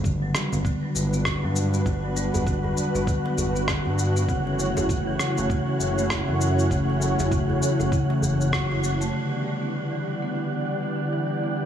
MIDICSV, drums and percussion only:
0, 0, Header, 1, 3, 480
1, 0, Start_track
1, 0, Tempo, 606061
1, 1475, Time_signature, 4, 2, 24, 8
1, 9230, End_track
2, 0, Start_track
2, 0, Title_t, "Djembe"
2, 275, Note_on_c, 9, 63, 35
2, 354, Note_off_c, 9, 63, 0
2, 417, Note_on_c, 9, 63, 78
2, 496, Note_off_c, 9, 63, 0
2, 1854, Note_on_c, 9, 63, 32
2, 1856, Note_on_c, 9, 62, 55
2, 1856, Note_on_c, 9, 64, 76
2, 1934, Note_off_c, 9, 63, 0
2, 1935, Note_off_c, 9, 62, 0
2, 1935, Note_off_c, 9, 64, 0
2, 2092, Note_on_c, 9, 64, 69
2, 2171, Note_off_c, 9, 64, 0
2, 2195, Note_on_c, 9, 63, 30
2, 2275, Note_off_c, 9, 63, 0
2, 2338, Note_on_c, 9, 63, 76
2, 2417, Note_off_c, 9, 63, 0
2, 2579, Note_on_c, 9, 62, 52
2, 2658, Note_off_c, 9, 62, 0
2, 2678, Note_on_c, 9, 63, 55
2, 2679, Note_on_c, 9, 64, 74
2, 2758, Note_off_c, 9, 63, 0
2, 2759, Note_off_c, 9, 64, 0
2, 3055, Note_on_c, 9, 63, 58
2, 3134, Note_off_c, 9, 63, 0
2, 3540, Note_on_c, 9, 62, 35
2, 3619, Note_off_c, 9, 62, 0
2, 3776, Note_on_c, 9, 62, 64
2, 3778, Note_on_c, 9, 63, 33
2, 3780, Note_on_c, 9, 64, 79
2, 3856, Note_off_c, 9, 62, 0
2, 3857, Note_off_c, 9, 63, 0
2, 3859, Note_off_c, 9, 64, 0
2, 4114, Note_on_c, 9, 63, 33
2, 4193, Note_off_c, 9, 63, 0
2, 4259, Note_on_c, 9, 63, 84
2, 4338, Note_off_c, 9, 63, 0
2, 5461, Note_on_c, 9, 62, 33
2, 5540, Note_off_c, 9, 62, 0
2, 5697, Note_on_c, 9, 63, 31
2, 5700, Note_on_c, 9, 64, 78
2, 5701, Note_on_c, 9, 62, 66
2, 5777, Note_off_c, 9, 63, 0
2, 5780, Note_off_c, 9, 62, 0
2, 5780, Note_off_c, 9, 64, 0
2, 5938, Note_on_c, 9, 64, 78
2, 6017, Note_off_c, 9, 64, 0
2, 6037, Note_on_c, 9, 63, 35
2, 6116, Note_off_c, 9, 63, 0
2, 6174, Note_on_c, 9, 63, 76
2, 6253, Note_off_c, 9, 63, 0
2, 6416, Note_on_c, 9, 62, 52
2, 6495, Note_off_c, 9, 62, 0
2, 6512, Note_on_c, 9, 64, 72
2, 6516, Note_on_c, 9, 63, 55
2, 6591, Note_off_c, 9, 64, 0
2, 6595, Note_off_c, 9, 63, 0
2, 6902, Note_on_c, 9, 63, 69
2, 6981, Note_off_c, 9, 63, 0
2, 9230, End_track
3, 0, Start_track
3, 0, Title_t, "Drums"
3, 33, Note_on_c, 9, 36, 94
3, 38, Note_on_c, 9, 82, 33
3, 112, Note_off_c, 9, 36, 0
3, 118, Note_off_c, 9, 82, 0
3, 274, Note_on_c, 9, 37, 68
3, 278, Note_on_c, 9, 82, 74
3, 353, Note_off_c, 9, 37, 0
3, 357, Note_off_c, 9, 82, 0
3, 419, Note_on_c, 9, 82, 42
3, 498, Note_off_c, 9, 82, 0
3, 513, Note_on_c, 9, 36, 106
3, 517, Note_on_c, 9, 82, 29
3, 592, Note_off_c, 9, 36, 0
3, 597, Note_off_c, 9, 82, 0
3, 757, Note_on_c, 9, 82, 76
3, 836, Note_off_c, 9, 82, 0
3, 897, Note_on_c, 9, 82, 43
3, 976, Note_off_c, 9, 82, 0
3, 992, Note_on_c, 9, 36, 96
3, 992, Note_on_c, 9, 37, 77
3, 996, Note_on_c, 9, 82, 32
3, 1071, Note_off_c, 9, 36, 0
3, 1071, Note_off_c, 9, 37, 0
3, 1075, Note_off_c, 9, 82, 0
3, 1235, Note_on_c, 9, 82, 81
3, 1315, Note_off_c, 9, 82, 0
3, 1377, Note_on_c, 9, 82, 46
3, 1456, Note_off_c, 9, 82, 0
3, 1472, Note_on_c, 9, 36, 98
3, 1476, Note_on_c, 9, 82, 29
3, 1552, Note_off_c, 9, 36, 0
3, 1555, Note_off_c, 9, 82, 0
3, 1715, Note_on_c, 9, 82, 70
3, 1794, Note_off_c, 9, 82, 0
3, 1858, Note_on_c, 9, 82, 41
3, 1937, Note_off_c, 9, 82, 0
3, 1953, Note_on_c, 9, 36, 97
3, 1957, Note_on_c, 9, 82, 31
3, 2032, Note_off_c, 9, 36, 0
3, 2036, Note_off_c, 9, 82, 0
3, 2197, Note_on_c, 9, 82, 65
3, 2276, Note_off_c, 9, 82, 0
3, 2339, Note_on_c, 9, 82, 38
3, 2418, Note_off_c, 9, 82, 0
3, 2433, Note_on_c, 9, 36, 105
3, 2439, Note_on_c, 9, 82, 30
3, 2512, Note_off_c, 9, 36, 0
3, 2518, Note_off_c, 9, 82, 0
3, 2678, Note_on_c, 9, 82, 78
3, 2758, Note_off_c, 9, 82, 0
3, 2818, Note_on_c, 9, 82, 42
3, 2898, Note_off_c, 9, 82, 0
3, 2913, Note_on_c, 9, 37, 73
3, 2914, Note_on_c, 9, 36, 89
3, 2917, Note_on_c, 9, 82, 33
3, 2993, Note_off_c, 9, 36, 0
3, 2993, Note_off_c, 9, 37, 0
3, 2996, Note_off_c, 9, 82, 0
3, 3158, Note_on_c, 9, 82, 80
3, 3237, Note_off_c, 9, 82, 0
3, 3299, Note_on_c, 9, 82, 44
3, 3378, Note_off_c, 9, 82, 0
3, 3395, Note_on_c, 9, 36, 97
3, 3398, Note_on_c, 9, 82, 30
3, 3474, Note_off_c, 9, 36, 0
3, 3477, Note_off_c, 9, 82, 0
3, 3638, Note_on_c, 9, 82, 70
3, 3717, Note_off_c, 9, 82, 0
3, 3780, Note_on_c, 9, 82, 39
3, 3859, Note_off_c, 9, 82, 0
3, 3874, Note_on_c, 9, 36, 94
3, 3879, Note_on_c, 9, 82, 33
3, 3954, Note_off_c, 9, 36, 0
3, 3958, Note_off_c, 9, 82, 0
3, 4114, Note_on_c, 9, 37, 66
3, 4118, Note_on_c, 9, 82, 69
3, 4193, Note_off_c, 9, 37, 0
3, 4197, Note_off_c, 9, 82, 0
3, 4259, Note_on_c, 9, 82, 39
3, 4338, Note_off_c, 9, 82, 0
3, 4354, Note_on_c, 9, 36, 104
3, 4358, Note_on_c, 9, 82, 28
3, 4434, Note_off_c, 9, 36, 0
3, 4438, Note_off_c, 9, 82, 0
3, 4597, Note_on_c, 9, 82, 74
3, 4677, Note_off_c, 9, 82, 0
3, 4738, Note_on_c, 9, 82, 43
3, 4818, Note_off_c, 9, 82, 0
3, 4833, Note_on_c, 9, 37, 78
3, 4834, Note_on_c, 9, 36, 96
3, 4837, Note_on_c, 9, 82, 33
3, 4912, Note_off_c, 9, 37, 0
3, 4913, Note_off_c, 9, 36, 0
3, 4916, Note_off_c, 9, 82, 0
3, 5077, Note_on_c, 9, 82, 79
3, 5156, Note_off_c, 9, 82, 0
3, 5220, Note_on_c, 9, 82, 42
3, 5299, Note_off_c, 9, 82, 0
3, 5314, Note_on_c, 9, 36, 94
3, 5318, Note_on_c, 9, 82, 29
3, 5393, Note_off_c, 9, 36, 0
3, 5397, Note_off_c, 9, 82, 0
3, 5557, Note_on_c, 9, 82, 73
3, 5636, Note_off_c, 9, 82, 0
3, 5697, Note_on_c, 9, 82, 41
3, 5777, Note_off_c, 9, 82, 0
3, 5794, Note_on_c, 9, 36, 101
3, 5798, Note_on_c, 9, 82, 32
3, 5873, Note_off_c, 9, 36, 0
3, 5877, Note_off_c, 9, 82, 0
3, 6038, Note_on_c, 9, 82, 71
3, 6117, Note_off_c, 9, 82, 0
3, 6179, Note_on_c, 9, 82, 39
3, 6258, Note_off_c, 9, 82, 0
3, 6273, Note_on_c, 9, 36, 104
3, 6278, Note_on_c, 9, 82, 30
3, 6352, Note_off_c, 9, 36, 0
3, 6358, Note_off_c, 9, 82, 0
3, 6519, Note_on_c, 9, 82, 74
3, 6598, Note_off_c, 9, 82, 0
3, 6660, Note_on_c, 9, 82, 43
3, 6740, Note_off_c, 9, 82, 0
3, 6753, Note_on_c, 9, 36, 96
3, 6756, Note_on_c, 9, 37, 84
3, 6760, Note_on_c, 9, 82, 34
3, 6832, Note_off_c, 9, 36, 0
3, 6835, Note_off_c, 9, 37, 0
3, 6839, Note_off_c, 9, 82, 0
3, 6999, Note_on_c, 9, 82, 76
3, 7078, Note_off_c, 9, 82, 0
3, 7140, Note_on_c, 9, 82, 45
3, 7219, Note_off_c, 9, 82, 0
3, 7478, Note_on_c, 9, 82, 67
3, 7557, Note_off_c, 9, 82, 0
3, 7620, Note_on_c, 9, 82, 37
3, 7699, Note_off_c, 9, 82, 0
3, 7719, Note_on_c, 9, 82, 27
3, 7798, Note_off_c, 9, 82, 0
3, 7960, Note_on_c, 9, 82, 68
3, 8039, Note_off_c, 9, 82, 0
3, 8101, Note_on_c, 9, 82, 36
3, 8180, Note_off_c, 9, 82, 0
3, 8199, Note_on_c, 9, 82, 27
3, 8278, Note_off_c, 9, 82, 0
3, 8439, Note_on_c, 9, 82, 68
3, 8518, Note_off_c, 9, 82, 0
3, 8580, Note_on_c, 9, 82, 39
3, 8659, Note_off_c, 9, 82, 0
3, 8680, Note_on_c, 9, 82, 28
3, 8759, Note_off_c, 9, 82, 0
3, 8920, Note_on_c, 9, 82, 72
3, 8999, Note_off_c, 9, 82, 0
3, 9061, Note_on_c, 9, 82, 38
3, 9140, Note_off_c, 9, 82, 0
3, 9160, Note_on_c, 9, 82, 28
3, 9230, Note_off_c, 9, 82, 0
3, 9230, End_track
0, 0, End_of_file